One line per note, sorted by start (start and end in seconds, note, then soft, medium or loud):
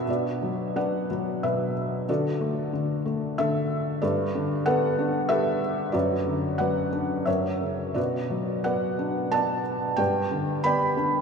0.00 0.10 B3 medium
0.00 0.10 D4 medium
0.00 0.10 F#4 medium
0.00 0.10 B4 medium
0.00 0.10 E5 loud
0.08 1.42 B2 soft
0.08 1.07 F#4 soft
0.08 0.75 B4 soft
0.08 0.75 D5 soft
0.42 1.09 F#3 soft
0.76 2.05 D4 soft
0.76 1.42 B4 soft
0.76 1.73 D5 soft
0.76 1.40 F#5 medium
1.11 2.06 F#3 soft
1.43 2.07 B2 soft
1.43 2.05 B4 soft
1.43 2.11 E5 medium
2.09 2.72 D3 medium
2.09 3.35 F#4 soft
2.09 3.35 A4 soft
2.09 3.34 D5 medium
2.41 3.04 A3 soft
2.73 3.37 D3 soft
3.05 3.99 A3 soft
3.38 4.01 D3 medium
3.38 3.99 A4 medium
3.38 3.98 E5 medium
4.02 5.90 G2 medium
4.02 4.65 A4 soft
4.02 4.65 B4 medium
4.02 4.62 D5 medium
4.35 5.58 D3 soft
4.66 5.91 B3 medium
4.66 5.28 A4 medium
4.66 5.28 B4 medium
4.66 5.31 F#5 medium
4.99 5.92 D4 soft
5.29 5.92 G4 medium
5.29 5.90 A4 medium
5.29 5.90 B4 medium
5.29 5.96 E5 medium
5.92 7.23 F#2 medium
5.92 6.89 F#4 medium
5.92 6.58 B4 soft
5.92 6.58 D5 medium
6.27 7.24 D3 soft
6.58 7.25 F#3 soft
6.58 7.23 B4 medium
6.58 7.23 D5 medium
6.58 7.22 F#5 medium
6.93 7.26 D4 soft
7.26 7.94 F#2 soft
7.26 7.92 A#4 soft
7.26 7.92 C#5 medium
7.26 7.97 E5 medium
7.61 7.95 C#3 soft
7.94 9.94 B2 soft
7.94 8.96 F#4 soft
7.94 8.64 B4 soft
7.94 8.61 D5 medium
8.30 9.61 F#3 soft
8.64 9.30 B3 soft
8.64 9.62 B4 medium
8.64 9.32 D5 soft
8.64 9.28 F#5 medium
8.99 9.95 D4 soft
9.32 9.96 B3 soft
9.32 9.95 D5 medium
9.32 9.95 F#5 medium
9.32 10.00 A5 medium
9.97 11.21 G2 medium
9.97 10.93 B4 medium
9.97 10.65 D5 medium
9.97 10.59 G5 medium
10.31 11.21 D3 soft
10.64 11.21 B3 soft
10.64 11.21 D5 medium
10.64 11.21 G5 medium
10.64 11.21 B5 medium
10.97 11.21 D4 soft